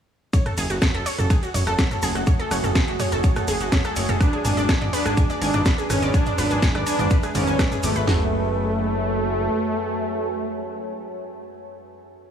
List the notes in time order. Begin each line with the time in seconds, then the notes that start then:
0.33 F#2 A3 F#4 G#4 C#5 C#6, kick, closed hi-hat, ride, shaker
0.46 A4 A5, cross-stick, closed hi-hat, mid tom
0.57 F#1 G#4 G#5, open hi-hat, ride, shaker
0.70 F#1 F#4 F#5, closed hi-hat, shaker
0.82 C#5 C#6, kick, cross-stick, snare, closed hi-hat, mid tom, ride, shaker
0.94 F#1 A4 A5, closed hi-hat
1.06 C#5 C#6, open hi-hat, ride, shaker
1.18 F#1 A4 A5, closed hi-hat, mid tom, shaker
1.30 G#4 G#5, kick, cross-stick, closed hi-hat, ride, shaker
1.43 F#4 F#5, closed hi-hat, shaker
1.54 F#1 C#5 C#6, mid tom, open hi-hat, ride, shaker
1.67 F#1 A4 A5, cross-stick, closed hi-hat, shaker
1.78 C#5 C#6, kick, snare, closed hi-hat, ride, shaker
1.91 A4 A5, closed hi-hat, mid tom, shaker
2.02 F#1 G#4 G#5, open hi-hat, ride, shaker
2.15 F#1 F#4 F#5, cross-stick, closed hi-hat, shaker
2.27 C#5 C#6, kick, closed hi-hat, mid tom, ride, shaker
2.39 A4 A5, closed hi-hat
2.51 F#1 C#5 C#6, cross-stick, open hi-hat, ride, shaker
2.64 F#1 A4 A5, closed hi-hat, mid tom, shaker
2.75 G#4 G#5, kick, snare, closed hi-hat, ride, shaker
2.88 F#1 F#4 F#5, closed hi-hat
3.00 C#5 C#6, cross-stick, mid tom, open hi-hat, ride, shaker
3.12 F#1 A4 A5, closed hi-hat, shaker
3.24 C#5 C#6, kick, closed hi-hat, ride, shaker
3.36 A4 A5, cross-stick, closed hi-hat, mid tom, shaker
3.48 F#1 G#4 G#5, open hi-hat, ride, shaker
3.60 F#1 F#4 F#5, closed hi-hat, shaker
3.72 C#5 C#6, kick, snare, closed hi-hat, mid tom, ride, shaker
3.84 A4 A5, cross-stick, closed hi-hat, shaker
3.96 F#1 C#5 C#6, open hi-hat, ride, shaker
4.08 F#1 A4 A5, closed hi-hat, mid tom, shaker
4.20 G#3 D4 B4 D5 B5, kick, cross-stick, closed hi-hat, ride, shaker
4.33 G#4 G#5, closed hi-hat
4.45 G#1 D4 G#5 G#6, mid tom, open hi-hat, ride, shaker
4.57 G#1 D5 D6, closed hi-hat, shaker
4.69 G#5 G#6, kick, cross-stick, snare, closed hi-hat, ride, shaker
4.81 G#1 D5 D6, closed hi-hat, mid tom
4.93 D4 B4 B5, open hi-hat, ride, shaker
5.05 G#1 G#4 G#5, cross-stick, closed hi-hat, shaker
5.17 G#5 G#6, kick, closed hi-hat, mid tom, ride, shaker
5.30 D5 D6, closed hi-hat, shaker
5.41 G#1 D4 G#5 G#6, open hi-hat, ride, shaker
5.53 G#1 D5 D6, cross-stick, mid tom, shaker
5.65 B4 B5, kick, snare, closed hi-hat, ride, shaker
5.78 G#4 G#5, closed hi-hat, shaker
5.90 G#1 C#4 G#5 G#6, cross-stick, mid tom, open hi-hat, ride, shaker
6.02 G#1 D5 D6, closed hi-hat, shaker
6.14 D4 E5 G#5 G#6, kick, closed hi-hat, ride, shaker
6.26 D5 D6, closed hi-hat, mid tom, shaker
6.38 G#1 D4 B4 B5, cross-stick, open hi-hat, ride, shaker
6.50 G#1 G#4 G#5, closed hi-hat, shaker
6.62 G#5 G#6, kick, snare, closed hi-hat, mid tom, ride, shaker
6.75 G#1 D5 D6, cross-stick, closed hi-hat
6.86 D4 G#5 G#6, open hi-hat, ride, shaker
6.99 G#1 D5 D6, closed hi-hat, mid tom, shaker
7.10 B4 B5, kick, closed hi-hat, ride, shaker
7.23 G#4 G#5, cross-stick, closed hi-hat, shaker
7.35 G#1 C#4 D5 D6, mid tom, open hi-hat, ride, shaker
7.47 G#1 G#5 G#6, closed hi-hat, shaker
7.59 D5 D6, kick, cross-stick, snare, closed hi-hat, ride, shaker
7.71 G#4 G#5, closed hi-hat, mid tom, shaker
7.83 G#1 A3 D6, open hi-hat, ride, shaker
7.96 G#1 B4 B5, closed hi-hat, shaker
8.07 F#1 F#2 A3 F#4 C#5 G#5 A5, snare, floor tom